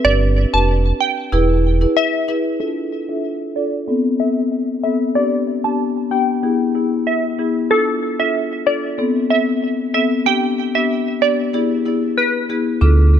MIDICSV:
0, 0, Header, 1, 4, 480
1, 0, Start_track
1, 0, Tempo, 638298
1, 37, Time_signature, 4, 2, 24, 8
1, 9923, End_track
2, 0, Start_track
2, 0, Title_t, "Synth pluck"
2, 0, Program_c, 0, 84
2, 35, Note_on_c, 0, 74, 106
2, 115, Note_off_c, 0, 74, 0
2, 403, Note_on_c, 0, 81, 72
2, 553, Note_off_c, 0, 81, 0
2, 756, Note_on_c, 0, 79, 81
2, 906, Note_off_c, 0, 79, 0
2, 1478, Note_on_c, 0, 76, 81
2, 1823, Note_off_c, 0, 76, 0
2, 1957, Note_on_c, 0, 69, 97
2, 2036, Note_off_c, 0, 69, 0
2, 2323, Note_on_c, 0, 76, 82
2, 2473, Note_off_c, 0, 76, 0
2, 2676, Note_on_c, 0, 74, 74
2, 2826, Note_off_c, 0, 74, 0
2, 3156, Note_on_c, 0, 76, 79
2, 3236, Note_off_c, 0, 76, 0
2, 3636, Note_on_c, 0, 76, 84
2, 3715, Note_off_c, 0, 76, 0
2, 3875, Note_on_c, 0, 74, 98
2, 3955, Note_off_c, 0, 74, 0
2, 4243, Note_on_c, 0, 81, 67
2, 4393, Note_off_c, 0, 81, 0
2, 4596, Note_on_c, 0, 79, 78
2, 4746, Note_off_c, 0, 79, 0
2, 5315, Note_on_c, 0, 76, 78
2, 5661, Note_off_c, 0, 76, 0
2, 5796, Note_on_c, 0, 69, 99
2, 5875, Note_off_c, 0, 69, 0
2, 6163, Note_on_c, 0, 76, 80
2, 6313, Note_off_c, 0, 76, 0
2, 6517, Note_on_c, 0, 74, 79
2, 6666, Note_off_c, 0, 74, 0
2, 6997, Note_on_c, 0, 76, 79
2, 7076, Note_off_c, 0, 76, 0
2, 7477, Note_on_c, 0, 76, 83
2, 7556, Note_off_c, 0, 76, 0
2, 7717, Note_on_c, 0, 79, 100
2, 7797, Note_off_c, 0, 79, 0
2, 8085, Note_on_c, 0, 76, 68
2, 8234, Note_off_c, 0, 76, 0
2, 8437, Note_on_c, 0, 74, 77
2, 8586, Note_off_c, 0, 74, 0
2, 9156, Note_on_c, 0, 71, 77
2, 9501, Note_off_c, 0, 71, 0
2, 9923, End_track
3, 0, Start_track
3, 0, Title_t, "Marimba"
3, 0, Program_c, 1, 12
3, 35, Note_on_c, 1, 62, 97
3, 37, Note_on_c, 1, 67, 87
3, 39, Note_on_c, 1, 71, 107
3, 144, Note_off_c, 1, 62, 0
3, 145, Note_off_c, 1, 67, 0
3, 146, Note_off_c, 1, 71, 0
3, 402, Note_on_c, 1, 62, 77
3, 404, Note_on_c, 1, 67, 71
3, 406, Note_on_c, 1, 71, 83
3, 499, Note_off_c, 1, 62, 0
3, 500, Note_off_c, 1, 67, 0
3, 501, Note_off_c, 1, 71, 0
3, 995, Note_on_c, 1, 64, 98
3, 997, Note_on_c, 1, 68, 86
3, 1000, Note_on_c, 1, 71, 103
3, 1104, Note_off_c, 1, 64, 0
3, 1105, Note_off_c, 1, 68, 0
3, 1106, Note_off_c, 1, 71, 0
3, 1363, Note_on_c, 1, 64, 77
3, 1365, Note_on_c, 1, 68, 71
3, 1367, Note_on_c, 1, 71, 84
3, 1459, Note_off_c, 1, 64, 0
3, 1460, Note_off_c, 1, 68, 0
3, 1461, Note_off_c, 1, 71, 0
3, 1716, Note_on_c, 1, 64, 81
3, 1718, Note_on_c, 1, 68, 70
3, 1720, Note_on_c, 1, 71, 84
3, 1824, Note_off_c, 1, 64, 0
3, 1826, Note_off_c, 1, 68, 0
3, 1827, Note_off_c, 1, 71, 0
3, 1956, Note_on_c, 1, 62, 83
3, 1958, Note_on_c, 1, 65, 78
3, 1960, Note_on_c, 1, 69, 94
3, 2064, Note_off_c, 1, 62, 0
3, 2066, Note_off_c, 1, 65, 0
3, 2067, Note_off_c, 1, 69, 0
3, 2322, Note_on_c, 1, 62, 68
3, 2324, Note_on_c, 1, 65, 64
3, 2326, Note_on_c, 1, 69, 75
3, 2419, Note_off_c, 1, 62, 0
3, 2420, Note_off_c, 1, 65, 0
3, 2421, Note_off_c, 1, 69, 0
3, 2674, Note_on_c, 1, 62, 68
3, 2676, Note_on_c, 1, 65, 66
3, 2679, Note_on_c, 1, 69, 76
3, 2784, Note_off_c, 1, 62, 0
3, 2785, Note_off_c, 1, 65, 0
3, 2786, Note_off_c, 1, 69, 0
3, 2914, Note_on_c, 1, 59, 88
3, 2916, Note_on_c, 1, 60, 80
3, 2918, Note_on_c, 1, 69, 98
3, 3137, Note_off_c, 1, 59, 0
3, 3138, Note_off_c, 1, 60, 0
3, 3139, Note_off_c, 1, 69, 0
3, 3154, Note_on_c, 1, 59, 74
3, 3156, Note_on_c, 1, 60, 65
3, 3158, Note_on_c, 1, 69, 79
3, 3264, Note_off_c, 1, 59, 0
3, 3265, Note_off_c, 1, 60, 0
3, 3266, Note_off_c, 1, 69, 0
3, 3635, Note_on_c, 1, 59, 71
3, 3637, Note_on_c, 1, 60, 67
3, 3639, Note_on_c, 1, 69, 80
3, 3744, Note_off_c, 1, 59, 0
3, 3745, Note_off_c, 1, 60, 0
3, 3746, Note_off_c, 1, 69, 0
3, 3874, Note_on_c, 1, 59, 85
3, 3876, Note_on_c, 1, 62, 80
3, 3878, Note_on_c, 1, 67, 94
3, 3983, Note_off_c, 1, 59, 0
3, 3985, Note_off_c, 1, 62, 0
3, 3986, Note_off_c, 1, 67, 0
3, 4241, Note_on_c, 1, 59, 72
3, 4244, Note_on_c, 1, 62, 62
3, 4246, Note_on_c, 1, 67, 76
3, 4338, Note_off_c, 1, 59, 0
3, 4340, Note_off_c, 1, 62, 0
3, 4341, Note_off_c, 1, 67, 0
3, 4594, Note_on_c, 1, 59, 71
3, 4597, Note_on_c, 1, 62, 66
3, 4599, Note_on_c, 1, 67, 80
3, 4704, Note_off_c, 1, 59, 0
3, 4705, Note_off_c, 1, 62, 0
3, 4706, Note_off_c, 1, 67, 0
3, 4834, Note_on_c, 1, 59, 90
3, 4837, Note_on_c, 1, 64, 79
3, 4839, Note_on_c, 1, 68, 93
3, 5057, Note_off_c, 1, 59, 0
3, 5059, Note_off_c, 1, 64, 0
3, 5060, Note_off_c, 1, 68, 0
3, 5074, Note_on_c, 1, 59, 73
3, 5077, Note_on_c, 1, 64, 64
3, 5079, Note_on_c, 1, 68, 81
3, 5184, Note_off_c, 1, 59, 0
3, 5185, Note_off_c, 1, 64, 0
3, 5186, Note_off_c, 1, 68, 0
3, 5554, Note_on_c, 1, 59, 72
3, 5556, Note_on_c, 1, 64, 66
3, 5558, Note_on_c, 1, 68, 80
3, 5663, Note_off_c, 1, 59, 0
3, 5665, Note_off_c, 1, 64, 0
3, 5666, Note_off_c, 1, 68, 0
3, 5794, Note_on_c, 1, 62, 90
3, 5796, Note_on_c, 1, 65, 81
3, 5798, Note_on_c, 1, 69, 98
3, 5904, Note_off_c, 1, 62, 0
3, 5905, Note_off_c, 1, 65, 0
3, 5906, Note_off_c, 1, 69, 0
3, 6161, Note_on_c, 1, 62, 68
3, 6164, Note_on_c, 1, 65, 66
3, 6165, Note_on_c, 1, 69, 80
3, 6259, Note_off_c, 1, 62, 0
3, 6260, Note_off_c, 1, 65, 0
3, 6261, Note_off_c, 1, 69, 0
3, 6514, Note_on_c, 1, 62, 74
3, 6517, Note_on_c, 1, 65, 68
3, 6519, Note_on_c, 1, 69, 79
3, 6624, Note_off_c, 1, 62, 0
3, 6625, Note_off_c, 1, 65, 0
3, 6626, Note_off_c, 1, 69, 0
3, 6754, Note_on_c, 1, 59, 91
3, 6757, Note_on_c, 1, 60, 81
3, 6759, Note_on_c, 1, 69, 102
3, 6978, Note_off_c, 1, 59, 0
3, 6979, Note_off_c, 1, 60, 0
3, 6980, Note_off_c, 1, 69, 0
3, 6995, Note_on_c, 1, 59, 70
3, 6996, Note_on_c, 1, 60, 66
3, 6999, Note_on_c, 1, 69, 77
3, 7104, Note_off_c, 1, 59, 0
3, 7105, Note_off_c, 1, 60, 0
3, 7106, Note_off_c, 1, 69, 0
3, 7474, Note_on_c, 1, 59, 74
3, 7476, Note_on_c, 1, 60, 69
3, 7478, Note_on_c, 1, 69, 77
3, 7584, Note_off_c, 1, 59, 0
3, 7585, Note_off_c, 1, 60, 0
3, 7586, Note_off_c, 1, 69, 0
3, 7714, Note_on_c, 1, 59, 85
3, 7716, Note_on_c, 1, 62, 80
3, 7718, Note_on_c, 1, 67, 95
3, 7824, Note_off_c, 1, 59, 0
3, 7825, Note_off_c, 1, 62, 0
3, 7826, Note_off_c, 1, 67, 0
3, 8081, Note_on_c, 1, 59, 72
3, 8083, Note_on_c, 1, 62, 68
3, 8085, Note_on_c, 1, 67, 79
3, 8178, Note_off_c, 1, 59, 0
3, 8180, Note_off_c, 1, 62, 0
3, 8180, Note_off_c, 1, 67, 0
3, 8434, Note_on_c, 1, 59, 73
3, 8437, Note_on_c, 1, 62, 65
3, 8439, Note_on_c, 1, 67, 79
3, 8544, Note_off_c, 1, 59, 0
3, 8545, Note_off_c, 1, 62, 0
3, 8546, Note_off_c, 1, 67, 0
3, 8675, Note_on_c, 1, 59, 87
3, 8678, Note_on_c, 1, 64, 81
3, 8680, Note_on_c, 1, 68, 100
3, 8898, Note_off_c, 1, 59, 0
3, 8899, Note_off_c, 1, 64, 0
3, 8900, Note_off_c, 1, 68, 0
3, 8915, Note_on_c, 1, 59, 76
3, 8918, Note_on_c, 1, 64, 68
3, 8920, Note_on_c, 1, 68, 81
3, 9024, Note_off_c, 1, 59, 0
3, 9025, Note_off_c, 1, 64, 0
3, 9027, Note_off_c, 1, 68, 0
3, 9395, Note_on_c, 1, 59, 73
3, 9397, Note_on_c, 1, 64, 66
3, 9400, Note_on_c, 1, 68, 80
3, 9504, Note_off_c, 1, 59, 0
3, 9505, Note_off_c, 1, 64, 0
3, 9506, Note_off_c, 1, 68, 0
3, 9635, Note_on_c, 1, 62, 89
3, 9637, Note_on_c, 1, 65, 83
3, 9639, Note_on_c, 1, 69, 96
3, 9923, Note_off_c, 1, 62, 0
3, 9923, Note_off_c, 1, 65, 0
3, 9923, Note_off_c, 1, 69, 0
3, 9923, End_track
4, 0, Start_track
4, 0, Title_t, "Sub bass"
4, 0, Program_c, 2, 38
4, 36, Note_on_c, 2, 31, 112
4, 344, Note_off_c, 2, 31, 0
4, 404, Note_on_c, 2, 29, 91
4, 699, Note_off_c, 2, 29, 0
4, 997, Note_on_c, 2, 28, 120
4, 1399, Note_off_c, 2, 28, 0
4, 9637, Note_on_c, 2, 38, 110
4, 9923, Note_off_c, 2, 38, 0
4, 9923, End_track
0, 0, End_of_file